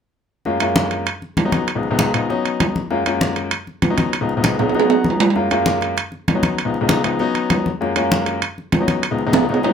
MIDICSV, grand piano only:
0, 0, Header, 1, 2, 480
1, 0, Start_track
1, 0, Key_signature, 6, "major"
1, 0, Tempo, 306279
1, 710, Time_signature, 4, 2, 24, 8
1, 15249, End_track
2, 0, Start_track
2, 0, Title_t, "Grand piano"
2, 0, Program_c, 0, 0
2, 716, Note_on_c, 0, 42, 67
2, 716, Note_on_c, 0, 56, 64
2, 720, Note_on_c, 0, 58, 61
2, 720, Note_on_c, 0, 61, 62
2, 722, Note_on_c, 0, 65, 81
2, 881, Note_off_c, 0, 42, 0
2, 881, Note_off_c, 0, 56, 0
2, 883, Note_off_c, 0, 58, 0
2, 883, Note_off_c, 0, 61, 0
2, 884, Note_off_c, 0, 65, 0
2, 953, Note_on_c, 0, 42, 73
2, 953, Note_on_c, 0, 58, 69
2, 958, Note_on_c, 0, 65, 81
2, 959, Note_on_c, 0, 56, 71
2, 959, Note_on_c, 0, 61, 73
2, 1624, Note_off_c, 0, 58, 0
2, 1625, Note_off_c, 0, 42, 0
2, 1627, Note_off_c, 0, 56, 0
2, 1627, Note_off_c, 0, 61, 0
2, 1627, Note_off_c, 0, 65, 0
2, 2275, Note_on_c, 0, 61, 64
2, 2275, Note_on_c, 0, 63, 83
2, 2276, Note_on_c, 0, 54, 73
2, 2282, Note_on_c, 0, 59, 67
2, 2610, Note_off_c, 0, 54, 0
2, 2610, Note_off_c, 0, 61, 0
2, 2610, Note_off_c, 0, 63, 0
2, 2613, Note_off_c, 0, 59, 0
2, 2750, Note_on_c, 0, 37, 67
2, 2753, Note_on_c, 0, 53, 59
2, 2755, Note_on_c, 0, 56, 65
2, 2755, Note_on_c, 0, 59, 61
2, 2755, Note_on_c, 0, 63, 72
2, 2919, Note_off_c, 0, 37, 0
2, 2921, Note_off_c, 0, 53, 0
2, 2922, Note_off_c, 0, 56, 0
2, 2922, Note_off_c, 0, 59, 0
2, 2922, Note_off_c, 0, 63, 0
2, 2988, Note_on_c, 0, 37, 79
2, 2991, Note_on_c, 0, 53, 66
2, 2993, Note_on_c, 0, 63, 81
2, 2995, Note_on_c, 0, 56, 67
2, 2995, Note_on_c, 0, 59, 73
2, 3075, Note_off_c, 0, 37, 0
2, 3076, Note_off_c, 0, 53, 0
2, 3077, Note_off_c, 0, 63, 0
2, 3078, Note_off_c, 0, 56, 0
2, 3078, Note_off_c, 0, 59, 0
2, 3123, Note_on_c, 0, 37, 83
2, 3123, Note_on_c, 0, 56, 73
2, 3124, Note_on_c, 0, 53, 66
2, 3125, Note_on_c, 0, 59, 79
2, 3126, Note_on_c, 0, 63, 77
2, 3286, Note_off_c, 0, 37, 0
2, 3286, Note_off_c, 0, 53, 0
2, 3286, Note_off_c, 0, 56, 0
2, 3287, Note_off_c, 0, 59, 0
2, 3287, Note_off_c, 0, 63, 0
2, 3356, Note_on_c, 0, 56, 66
2, 3357, Note_on_c, 0, 53, 65
2, 3358, Note_on_c, 0, 37, 66
2, 3359, Note_on_c, 0, 59, 67
2, 3363, Note_on_c, 0, 63, 75
2, 3573, Note_off_c, 0, 59, 0
2, 3575, Note_off_c, 0, 63, 0
2, 3595, Note_off_c, 0, 53, 0
2, 3595, Note_off_c, 0, 56, 0
2, 3595, Note_on_c, 0, 61, 73
2, 3596, Note_off_c, 0, 37, 0
2, 3596, Note_on_c, 0, 59, 72
2, 3597, Note_on_c, 0, 54, 79
2, 3598, Note_on_c, 0, 63, 91
2, 4363, Note_off_c, 0, 61, 0
2, 4364, Note_off_c, 0, 54, 0
2, 4364, Note_off_c, 0, 59, 0
2, 4365, Note_off_c, 0, 63, 0
2, 4550, Note_on_c, 0, 56, 69
2, 4553, Note_on_c, 0, 65, 88
2, 4555, Note_on_c, 0, 58, 67
2, 4556, Note_on_c, 0, 42, 74
2, 4558, Note_on_c, 0, 61, 70
2, 4721, Note_off_c, 0, 56, 0
2, 4722, Note_off_c, 0, 65, 0
2, 4723, Note_off_c, 0, 42, 0
2, 4723, Note_off_c, 0, 58, 0
2, 4724, Note_off_c, 0, 61, 0
2, 4800, Note_on_c, 0, 42, 76
2, 4800, Note_on_c, 0, 58, 69
2, 4802, Note_on_c, 0, 56, 67
2, 4802, Note_on_c, 0, 61, 72
2, 4804, Note_on_c, 0, 65, 82
2, 5470, Note_off_c, 0, 42, 0
2, 5470, Note_off_c, 0, 58, 0
2, 5471, Note_off_c, 0, 56, 0
2, 5471, Note_off_c, 0, 61, 0
2, 5472, Note_off_c, 0, 65, 0
2, 6117, Note_on_c, 0, 54, 74
2, 6117, Note_on_c, 0, 63, 82
2, 6119, Note_on_c, 0, 61, 62
2, 6120, Note_on_c, 0, 59, 62
2, 6453, Note_off_c, 0, 54, 0
2, 6453, Note_off_c, 0, 63, 0
2, 6454, Note_off_c, 0, 59, 0
2, 6454, Note_off_c, 0, 61, 0
2, 6596, Note_on_c, 0, 53, 59
2, 6598, Note_on_c, 0, 59, 60
2, 6598, Note_on_c, 0, 63, 78
2, 6599, Note_on_c, 0, 56, 61
2, 6600, Note_on_c, 0, 37, 70
2, 6765, Note_off_c, 0, 53, 0
2, 6765, Note_off_c, 0, 59, 0
2, 6766, Note_off_c, 0, 37, 0
2, 6766, Note_off_c, 0, 56, 0
2, 6766, Note_off_c, 0, 63, 0
2, 6845, Note_on_c, 0, 53, 62
2, 6846, Note_on_c, 0, 59, 66
2, 6848, Note_on_c, 0, 37, 67
2, 6849, Note_on_c, 0, 56, 60
2, 6849, Note_on_c, 0, 63, 76
2, 6925, Note_off_c, 0, 53, 0
2, 6925, Note_off_c, 0, 59, 0
2, 6926, Note_off_c, 0, 37, 0
2, 6927, Note_off_c, 0, 56, 0
2, 6927, Note_off_c, 0, 63, 0
2, 6956, Note_on_c, 0, 53, 74
2, 6958, Note_on_c, 0, 63, 76
2, 6959, Note_on_c, 0, 37, 76
2, 6961, Note_on_c, 0, 56, 72
2, 6963, Note_on_c, 0, 59, 71
2, 7124, Note_off_c, 0, 53, 0
2, 7125, Note_off_c, 0, 63, 0
2, 7126, Note_off_c, 0, 37, 0
2, 7127, Note_off_c, 0, 56, 0
2, 7128, Note_off_c, 0, 59, 0
2, 7199, Note_on_c, 0, 53, 65
2, 7200, Note_on_c, 0, 56, 64
2, 7200, Note_on_c, 0, 63, 80
2, 7201, Note_on_c, 0, 59, 63
2, 7204, Note_on_c, 0, 37, 73
2, 7204, Note_on_c, 0, 73, 61
2, 7415, Note_off_c, 0, 63, 0
2, 7417, Note_off_c, 0, 59, 0
2, 7424, Note_off_c, 0, 73, 0
2, 7438, Note_off_c, 0, 53, 0
2, 7439, Note_off_c, 0, 56, 0
2, 7439, Note_on_c, 0, 63, 78
2, 7441, Note_off_c, 0, 37, 0
2, 7441, Note_on_c, 0, 59, 73
2, 7441, Note_on_c, 0, 75, 59
2, 7442, Note_on_c, 0, 61, 67
2, 7444, Note_on_c, 0, 54, 86
2, 7663, Note_off_c, 0, 75, 0
2, 7681, Note_on_c, 0, 78, 66
2, 7902, Note_off_c, 0, 78, 0
2, 7905, Note_on_c, 0, 82, 66
2, 8134, Note_off_c, 0, 82, 0
2, 8157, Note_on_c, 0, 83, 62
2, 8206, Note_off_c, 0, 63, 0
2, 8207, Note_off_c, 0, 59, 0
2, 8208, Note_off_c, 0, 61, 0
2, 8209, Note_off_c, 0, 54, 0
2, 8380, Note_off_c, 0, 83, 0
2, 8393, Note_on_c, 0, 42, 72
2, 8393, Note_on_c, 0, 61, 69
2, 8396, Note_on_c, 0, 65, 85
2, 8401, Note_on_c, 0, 58, 61
2, 8402, Note_on_c, 0, 56, 66
2, 8563, Note_off_c, 0, 42, 0
2, 8563, Note_off_c, 0, 61, 0
2, 8565, Note_off_c, 0, 65, 0
2, 8567, Note_off_c, 0, 58, 0
2, 8568, Note_off_c, 0, 56, 0
2, 8633, Note_on_c, 0, 56, 75
2, 8633, Note_on_c, 0, 61, 74
2, 8637, Note_on_c, 0, 65, 81
2, 8638, Note_on_c, 0, 42, 80
2, 8638, Note_on_c, 0, 58, 74
2, 9307, Note_off_c, 0, 56, 0
2, 9307, Note_off_c, 0, 61, 0
2, 9309, Note_off_c, 0, 65, 0
2, 9310, Note_off_c, 0, 42, 0
2, 9310, Note_off_c, 0, 58, 0
2, 9947, Note_on_c, 0, 61, 65
2, 9949, Note_on_c, 0, 54, 72
2, 9951, Note_on_c, 0, 63, 73
2, 9953, Note_on_c, 0, 59, 67
2, 10288, Note_off_c, 0, 61, 0
2, 10289, Note_off_c, 0, 54, 0
2, 10290, Note_off_c, 0, 63, 0
2, 10291, Note_off_c, 0, 59, 0
2, 10422, Note_on_c, 0, 53, 68
2, 10422, Note_on_c, 0, 56, 62
2, 10422, Note_on_c, 0, 63, 73
2, 10425, Note_on_c, 0, 37, 61
2, 10425, Note_on_c, 0, 59, 63
2, 10597, Note_off_c, 0, 53, 0
2, 10597, Note_off_c, 0, 56, 0
2, 10597, Note_off_c, 0, 63, 0
2, 10598, Note_off_c, 0, 37, 0
2, 10598, Note_off_c, 0, 59, 0
2, 10674, Note_on_c, 0, 37, 76
2, 10674, Note_on_c, 0, 53, 59
2, 10674, Note_on_c, 0, 56, 66
2, 10675, Note_on_c, 0, 59, 71
2, 10678, Note_on_c, 0, 63, 74
2, 10759, Note_off_c, 0, 37, 0
2, 10759, Note_off_c, 0, 53, 0
2, 10759, Note_off_c, 0, 56, 0
2, 10760, Note_off_c, 0, 59, 0
2, 10761, Note_off_c, 0, 63, 0
2, 10800, Note_on_c, 0, 37, 84
2, 10803, Note_on_c, 0, 59, 69
2, 10804, Note_on_c, 0, 63, 86
2, 10805, Note_on_c, 0, 53, 74
2, 10806, Note_on_c, 0, 56, 74
2, 10966, Note_off_c, 0, 37, 0
2, 10967, Note_off_c, 0, 59, 0
2, 10968, Note_off_c, 0, 63, 0
2, 10969, Note_off_c, 0, 53, 0
2, 10969, Note_off_c, 0, 56, 0
2, 11036, Note_on_c, 0, 59, 66
2, 11039, Note_on_c, 0, 53, 70
2, 11039, Note_on_c, 0, 56, 70
2, 11040, Note_on_c, 0, 37, 66
2, 11042, Note_on_c, 0, 63, 77
2, 11255, Note_off_c, 0, 59, 0
2, 11258, Note_off_c, 0, 63, 0
2, 11275, Note_on_c, 0, 61, 75
2, 11276, Note_on_c, 0, 54, 85
2, 11277, Note_off_c, 0, 53, 0
2, 11277, Note_off_c, 0, 56, 0
2, 11278, Note_off_c, 0, 37, 0
2, 11279, Note_on_c, 0, 59, 76
2, 11282, Note_on_c, 0, 63, 100
2, 12042, Note_off_c, 0, 61, 0
2, 12043, Note_off_c, 0, 54, 0
2, 12044, Note_off_c, 0, 59, 0
2, 12046, Note_off_c, 0, 63, 0
2, 12235, Note_on_c, 0, 56, 73
2, 12236, Note_on_c, 0, 65, 77
2, 12237, Note_on_c, 0, 61, 64
2, 12241, Note_on_c, 0, 42, 75
2, 12243, Note_on_c, 0, 58, 70
2, 12402, Note_off_c, 0, 56, 0
2, 12403, Note_off_c, 0, 65, 0
2, 12404, Note_off_c, 0, 61, 0
2, 12406, Note_off_c, 0, 42, 0
2, 12407, Note_off_c, 0, 58, 0
2, 12471, Note_on_c, 0, 42, 76
2, 12471, Note_on_c, 0, 56, 76
2, 12475, Note_on_c, 0, 61, 77
2, 12478, Note_on_c, 0, 58, 79
2, 12479, Note_on_c, 0, 65, 78
2, 13143, Note_off_c, 0, 42, 0
2, 13143, Note_off_c, 0, 56, 0
2, 13145, Note_off_c, 0, 61, 0
2, 13147, Note_off_c, 0, 58, 0
2, 13147, Note_off_c, 0, 65, 0
2, 13797, Note_on_c, 0, 54, 74
2, 13798, Note_on_c, 0, 59, 66
2, 13799, Note_on_c, 0, 63, 76
2, 13800, Note_on_c, 0, 61, 66
2, 14130, Note_off_c, 0, 54, 0
2, 14130, Note_off_c, 0, 59, 0
2, 14130, Note_off_c, 0, 63, 0
2, 14131, Note_off_c, 0, 61, 0
2, 14278, Note_on_c, 0, 63, 79
2, 14281, Note_on_c, 0, 37, 69
2, 14281, Note_on_c, 0, 56, 65
2, 14282, Note_on_c, 0, 53, 61
2, 14282, Note_on_c, 0, 59, 64
2, 14442, Note_off_c, 0, 63, 0
2, 14443, Note_off_c, 0, 37, 0
2, 14443, Note_off_c, 0, 56, 0
2, 14444, Note_off_c, 0, 53, 0
2, 14444, Note_off_c, 0, 59, 0
2, 14519, Note_on_c, 0, 53, 68
2, 14521, Note_on_c, 0, 37, 74
2, 14521, Note_on_c, 0, 63, 88
2, 14523, Note_on_c, 0, 56, 70
2, 14523, Note_on_c, 0, 59, 69
2, 14598, Note_off_c, 0, 53, 0
2, 14599, Note_off_c, 0, 37, 0
2, 14599, Note_off_c, 0, 63, 0
2, 14600, Note_off_c, 0, 56, 0
2, 14600, Note_off_c, 0, 59, 0
2, 14636, Note_on_c, 0, 63, 85
2, 14637, Note_on_c, 0, 37, 83
2, 14638, Note_on_c, 0, 53, 76
2, 14638, Note_on_c, 0, 59, 79
2, 14640, Note_on_c, 0, 56, 73
2, 14800, Note_off_c, 0, 37, 0
2, 14800, Note_off_c, 0, 63, 0
2, 14801, Note_off_c, 0, 53, 0
2, 14801, Note_off_c, 0, 59, 0
2, 14802, Note_off_c, 0, 56, 0
2, 14878, Note_on_c, 0, 37, 69
2, 14880, Note_on_c, 0, 73, 67
2, 14883, Note_on_c, 0, 56, 65
2, 14883, Note_on_c, 0, 63, 87
2, 14884, Note_on_c, 0, 53, 67
2, 14885, Note_on_c, 0, 59, 64
2, 14986, Note_off_c, 0, 73, 0
2, 14995, Note_on_c, 0, 75, 61
2, 15082, Note_off_c, 0, 63, 0
2, 15083, Note_off_c, 0, 59, 0
2, 15103, Note_off_c, 0, 75, 0
2, 15105, Note_on_c, 0, 63, 87
2, 15106, Note_on_c, 0, 54, 84
2, 15107, Note_on_c, 0, 59, 79
2, 15107, Note_on_c, 0, 61, 78
2, 15112, Note_off_c, 0, 37, 0
2, 15112, Note_on_c, 0, 73, 62
2, 15115, Note_off_c, 0, 53, 0
2, 15115, Note_off_c, 0, 56, 0
2, 15249, Note_off_c, 0, 54, 0
2, 15249, Note_off_c, 0, 59, 0
2, 15249, Note_off_c, 0, 61, 0
2, 15249, Note_off_c, 0, 63, 0
2, 15249, Note_off_c, 0, 73, 0
2, 15249, End_track
0, 0, End_of_file